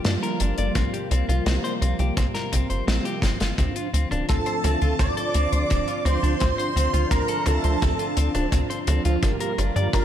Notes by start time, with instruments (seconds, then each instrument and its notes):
Already playing: analog synth pad D3 F3 G3 A#3 F4
0.05 analog synth bass G2, clean electric guitar D4, snare, closed hi-hat
0.23 clean electric guitar A#4, closed hi-hat
0.40 analog synth bass G1, clean electric guitar D4, closed hi-hat
0.58 analog synth bass G1, clean electric guitar D5, closed hi-hat
0.75 analog synth bass C2, analog synth pad C3, clean electric guitar C4, kick, closed hi-hat
0.93 clean electric guitar G4, closed hi-hat
1.11 analog synth bass C2, clean electric guitar C4, closed hi-hat
1.29 analog synth bass C2, clean electric guitar F4, closed hi-hat
1.46 analog synth bass C2, clean electric guitar C4, snare, closed hi-hat
1.64 clean electric guitar C5, closed hi-hat
1.82 analog synth bass C2, clean electric guitar C4, closed hi-hat
1.99 analog synth bass C2, clean electric guitar G4, closed hi-hat
2.17 analog synth bass C2, clean electric guitar C4, kick, closed hi-hat
2.34 clean electric guitar A#4, snare, closed hi-hat
2.52 analog synth bass C2, clean electric guitar C4, kick, closed hi-hat
2.70 analog synth bass G1, clean electric guitar C5, closed hi-hat
2.87 analog synth bass A#1, clean electric guitar C4, snare, closed hi-hat
3.05 clean electric guitar G4, closed hi-hat
3.22 analog synth bass G1, clean electric guitar C4, kick, snare, closed hi-hat
3.40 analog synth bass G1, clean electric guitar F4, snare, closed hi-hat
3.58 analog synth bass D2, analog synth pad D3 F3 C4 F4, clean electric guitar C4, analog polysynth D4 F4 C5, kick, closed hi-hat, mid tom
3.76 analog polysynth D4 F4 C5, clean electric guitar F4, closed hi-hat
3.93 analog synth bass D2, clean electric guitar C4, closed hi-hat
4.11 analog synth bass D1, clean electric guitar D4, analog polysynth D4 F4 C5, closed hi-hat, mid tom
4.29 analog synth bass D2, clean electric guitar C4, analog polysynth D4 F4 C5, analog synth lead A4, string machine A5, kick, closed hi-hat
4.46 clean electric guitar C5, closed hi-hat
4.64 analog synth bass D2, clean electric guitar C4, analog polysynth D4 F4 E5, closed hi-hat, mid tom
4.82 analog synth bass D2, clean electric guitar F4, closed hi-hat
4.99 analog synth bass D2, clean electric guitar C4, analog polysynth C5, analog synth lead D5, string machine D6, kick, closed hi-hat, mid tom
5.17 analog polysynth D4 F4 C5, clean electric guitar A4, closed hi-hat
5.34 analog synth bass D2, clean electric guitar C4, closed hi-hat
5.52 analog synth bass D2, analog polysynth D4 F4, clean electric guitar C5, closed hi-hat
5.70 analog synth bass D1, clean electric guitar C4, analog polysynth D4 F4 C5, kick, closed hi-hat
5.88 clean electric guitar F4, closed hi-hat
6.05 analog synth bass D2, clean electric guitar C4, analog polysynth D4 F4 A4, analog synth lead C5, string machine C6, closed hi-hat, mid tom
6.23 analog synth bass D2, clean electric guitar D4, analog polysynth D4 F4 C5, closed hi-hat
6.40 analog synth bass D2, clean electric guitar C4, analog synth pad D4, analog polysynth D4 F4 C5, analog synth lead C5, string machine C6, kick, closed hi-hat, mid tom
6.58 analog polysynth D4 F4 C5, clean electric guitar C5, closed hi-hat
6.76 analog synth bass D2, clean electric guitar C4, closed hi-hat
6.93 analog synth bass D2, analog polysynth D4 F4 C5, clean electric guitar F4, closed hi-hat
7.11 analog synth bass D2, clean electric guitar C4, analog polysynth D4 F4 C5, analog synth lead A#4, string machine A#5, kick, closed hi-hat
7.28 clean electric guitar A4, closed hi-hat
7.46 analog synth bass D2, clean electric guitar C4, analog polysynth D4 F4 E5, analog synth lead A4, string machine A5, closed hi-hat, mid tom
7.64 analog synth bass D2, clean electric guitar C5, closed hi-hat
7.82 analog synth bass D2, clean electric guitar C4, analog polysynth D4 F4 C5, kick, closed hi-hat, mid tom
7.99 analog polysynth D4 F4 C5, clean electric guitar F4, closed hi-hat
8.17 analog synth bass D2, clean electric guitar C4, closed hi-hat
8.35 analog synth bass D1, clean electric guitar D4, analog polysynth D4 F4 C5, closed hi-hat, mid tom
8.52 analog synth bass D2, clean electric guitar C4, analog polysynth D4 F4 C5, kick, closed hi-hat
8.70 clean electric guitar C5, closed hi-hat
8.87 analog synth bass D2, clean electric guitar C4, analog polysynth D4 F4 A4, closed hi-hat, mid tom
9.05 analog synth bass D2, analog polysynth D4 F4 C5, clean electric guitar F4, closed hi-hat
9.23 analog synth bass G1, analog synth pad D3 G3 A#3 F4, clean electric guitar D4, analog polysynth F4 G4 A#4, kick, closed hi-hat, mid tom
9.40 analog polysynth F4 G4 A#4, clean electric guitar A#4, closed hi-hat
9.58 analog synth bass G1, clean electric guitar D4, closed hi-hat, mid tom
9.76 analog synth bass G2, analog polysynth F4 G4 A#4, clean electric guitar D5, closed hi-hat
9.93 analog synth bass G1, clean electric guitar D4, analog polysynth F4 G4, analog synth lead A#4, string machine A#5, kick, closed hi-hat, mid tom